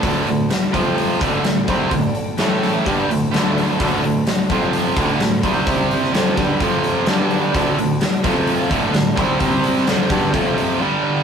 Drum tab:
HH |o-o-o-o-o-o-o-o-|o-o-o-o-o-o-o-o-|o-o-o-o-o-o-o-o-|o-o-o-o-o-o-o-o-|
SD |----o-------o---|----o-o-----o---|----o-------o---|---oo-o-----o---|
BD |o-----o---o---o-|o-------o-------|o-----o---o---o-|o-----o-o-------|

HH |o-o-o-o-o-o-o-o-|o-o-o-o-o-o-----|
SD |----o-o-----o---|---oo-o---------|
BD |o-----o---o---o-|o-----o-o-------|